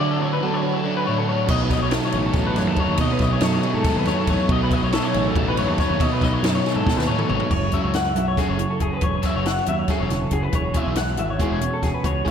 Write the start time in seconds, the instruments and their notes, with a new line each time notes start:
Already playing: clean electric guitar F#3 F#4
0.00 overdriven electric guitar D3 F#3 A3 D4 F#4, clean electric guitar D3 D5
0.11 clean electric guitar A4
0.18 overdriven electric guitar A3 D4 F#4
0.22 clean electric guitar C#5
0.33 clean electric guitar B4
0.40 overdriven electric guitar D3 F#3 A3 D4 F#4, clean electric guitar F#3 B3 A4
0.53 clean electric guitar D4 C#5
0.62 overdriven electric guitar A3 D4 F#4
0.66 clean electric guitar F#4
0.75 clean electric guitar A4
0.83 overdriven electric guitar F#3 A3 D4 F#4
0.87 clean electric guitar D4
0.97 clean electric guitar B4
1.05 clean electric guitar A2 C#5, overdriven electric guitar D3 F#3 A3 D4 F#4
1.18 clean electric guitar A4
1.28 overdriven electric guitar F#3 A3 D4 F#4, clean electric guitar C#5
1.47 fingered electric bass B1, overdriven electric guitar B2 F#3 A3 D#4, clean electric guitar B2 D#5, kick, crash
1.62 clean electric guitar B4
1.70 overdriven electric guitar F#3 A3 D#4, clean electric guitar D#5, kick, snare, ride
1.82 fingered electric bass B1, clean electric guitar C#5
1.91 overdriven electric guitar B2 F#3 A3 D#4, clean electric guitar F#3 A4, snare, ride
1.95 clean electric guitar D#4
2.05 clean electric guitar C#5
2.12 fingered electric bass A1, overdriven electric guitar A3 D#4, clean electric guitar G#4, ride
2.17 overdriven electric guitar F#3
2.26 clean electric guitar A4
2.33 fingered electric bass A1, overdriven electric guitar B2 F#3, clean electric guitar D#4, kick, snare, ride
2.38 overdriven electric guitar A3 D#4
2.46 clean electric guitar B4
2.55 clean electric guitar F#2 C#5, overdriven electric guitar B2 F#3 A3 D#4, snare, ride
2.67 fingered electric bass D#2, clean electric guitar A4
2.76 overdriven electric guitar B2 F#3 A3 D#4, clean electric guitar C#5, kick, ride
2.88 fingered electric bass D#2
2.97 overdriven electric guitar B2 F#3 A3 D#4, clean electric guitar B2 D#5, kick, ride
3.12 clean electric guitar B4
3.19 fingered electric bass B1, overdriven electric guitar A3 D#4, clean electric guitar D#5, kick, snare, ride
3.23 overdriven electric guitar F#3
3.33 clean electric guitar C#5
3.40 fingered electric bass F#2, overdriven electric guitar B2 F#3 A3 D#4, clean electric guitar F#3 D#4 A4, snare, ride
3.53 clean electric guitar C#5
3.63 overdriven electric guitar F#3 A3 D#4, clean electric guitar G#4, ride
3.74 fingered electric bass G#2, clean electric guitar A4
3.84 overdriven electric guitar B2 F#3 A3, clean electric guitar D#4, kick, snare, ride
3.89 overdriven electric guitar D#4
3.96 fingered electric bass D#2, clean electric guitar B4
4.04 clean electric guitar F#2 C#5, overdriven electric guitar D#4, snare, ride
4.08 overdriven electric guitar B2 F#3 A3
4.19 clean electric guitar A4
4.27 fingered electric bass A1, overdriven electric guitar B2 F#3, clean electric guitar C#5, kick, ride
4.32 overdriven electric guitar A3 D#4
4.49 fingered electric bass B1, clean electric guitar B2 D#5, overdriven electric guitar B2 F#3, kick, ride
4.53 overdriven electric guitar A3 D#4
4.63 clean electric guitar B4
4.71 overdriven electric guitar A3 D#4, clean electric guitar D#5, kick, ride
4.76 overdriven electric guitar F#3
4.82 fingered electric bass B1, clean electric guitar C#5
4.92 overdriven electric guitar B2 F#3 A3, clean electric guitar F#3 D#4 A4, snare, ride
4.98 overdriven electric guitar D#4
5.05 clean electric guitar C#5
5.14 fingered electric bass A1, overdriven electric guitar A3 D#4, clean electric guitar G#4, ride
5.19 overdriven electric guitar F#3
5.28 clean electric guitar A4
5.36 fingered electric bass A1, overdriven electric guitar B2 F#3 A3 D#4, clean electric guitar D#4, kick, ride
5.48 clean electric guitar B4
5.57 clean electric guitar F#2 C#5, overdriven electric guitar B2 F#3 A3 D#4, ride
5.68 fingered electric bass D#2, clean electric guitar A4
5.78 overdriven electric guitar B2 F#3 A3, clean electric guitar C#5, kick, snare, ride
5.82 overdriven electric guitar D#4
5.90 fingered electric bass D#2
6.00 overdriven electric guitar B2 F#3 A3 D#4, clean electric guitar B2 D#5, kick, ride
6.12 clean electric guitar B4
6.21 fingered electric bass B1, overdriven electric guitar A3 D#4, clean electric guitar D#5, kick, snare, ride
6.26 overdriven electric guitar F#3
6.34 clean electric guitar C#5
6.42 fingered electric bass F#2, overdriven electric guitar B2 F#3 A3 D#4, clean electric guitar F#3 D#4 A4, snare, ride
6.55 clean electric guitar C#5
6.65 overdriven electric guitar F#3 A3 D#4, clean electric guitar G#4, snare, ride
6.76 fingered electric bass G#2, clean electric guitar A4
6.86 clean electric guitar B2, overdriven electric guitar B2 F#3, kick, snare
6.90 overdriven electric guitar A3 D#4
6.97 fingered electric bass D#2, clean electric guitar B4, snare
7.07 clean electric guitar A2 C#5, overdriven electric guitar A3 D#4
7.12 overdriven electric guitar B2 F#3
7.19 clean electric guitar A4, mid tom
7.28 fingered electric bass G#1, clean electric guitar G#2 C#5, overdriven electric guitar B2 F#3, mid tom
7.33 overdriven electric guitar A3 D#4
7.40 floor tom
7.50 fingered electric bass F#1, clean electric guitar F#2 F#3 G#3 E4 C#5, muted overdriven electric guitar stroke, kick, crash
7.72 overdriven electric guitar F#3 C#4 F#4 A4, clean electric guitar E5, kick, closed hi-hat
7.84 fingered electric bass C#2, clean electric guitar C#5
7.93 clean electric guitar F#5, muted overdriven electric guitar stroke, snare, closed hi-hat
8.16 fingered electric bass B1, clean electric guitar F#3 E5, muted overdriven electric guitar stroke, closed hi-hat
8.28 clean electric guitar C#5
8.36 overdriven electric guitar F#3 C#4 F#4 A4, clean electric guitar G#4 A4, kick, snare, closed hi-hat
8.49 fingered electric bass F#1, clean electric guitar C#5
8.58 clean electric guitar C#3 E4, muted overdriven electric guitar stroke, closed hi-hat
8.70 clean electric guitar A4
8.80 fingered electric bass F#1, clean electric guitar E4 G#4, muted overdriven electric guitar stroke, kick, closed hi-hat
8.90 clean electric guitar F#4 B4
9.01 fingered electric bass E1, clean electric guitar F#2 C#5, muted overdriven electric guitar stroke, kick, closed hi-hat
9.22 overdriven electric guitar F#3 C#4 F#4 A4, clean electric guitar E5, kick, snare, closed hi-hat
9.36 fingered electric bass F#1, clean electric guitar C#5
9.45 clean electric guitar F#5, muted overdriven electric guitar stroke, snare, closed hi-hat
9.66 fingered electric bass D#2, clean electric guitar F#3 E5, muted overdriven electric guitar stroke, closed hi-hat
9.79 clean electric guitar C#5
9.88 overdriven electric guitar F#3 C#4 F#4 A4, clean electric guitar G#4 A4, kick, snare, closed hi-hat
10.00 fingered electric bass E1, clean electric guitar C#5
10.10 clean electric guitar C#3 E4, muted overdriven electric guitar stroke, snare, closed hi-hat
10.22 clean electric guitar A4
10.31 fingered electric bass F#1, clean electric guitar F#4 G#4, muted overdriven electric guitar stroke, kick, closed hi-hat
10.43 clean electric guitar B4
10.52 fingered electric bass E1, clean electric guitar E2 E4 C#5, muted overdriven electric guitar stroke, kick, closed hi-hat
10.64 clean electric guitar F#4
10.74 overdriven electric guitar G#3 B3 E4 G#4, clean electric guitar G#3 E5, kick, closed hi-hat
10.86 fingered electric bass B1, clean electric guitar C#5
10.95 clean electric guitar F#5, muted overdriven electric guitar stroke, snare, closed hi-hat
11.17 fingered electric bass G#1, clean electric guitar E3 E5, muted overdriven electric guitar stroke, closed hi-hat
11.30 clean electric guitar C#5
11.39 overdriven electric guitar G#3 B3 E4 G#4, clean electric guitar F#4 G#4, kick, closed hi-hat
11.52 fingered electric bass E1, clean electric guitar C#5
11.60 clean electric guitar B2 C#4, muted overdriven electric guitar stroke, closed hi-hat
11.74 clean electric guitar A4
11.83 fingered electric bass E1, clean electric guitar F#4 G#4, muted overdriven electric guitar stroke, kick, snare, closed hi-hat
11.94 clean electric guitar B4
12.02 fingered electric bass C#2, clean electric guitar E2 F#4 C#5, muted overdriven electric guitar stroke, kick, closed hi-hat
12.25 clean electric guitar G#3 E5, overdriven electric guitar G#3 B3 E4 G#4, kick, closed hi-hat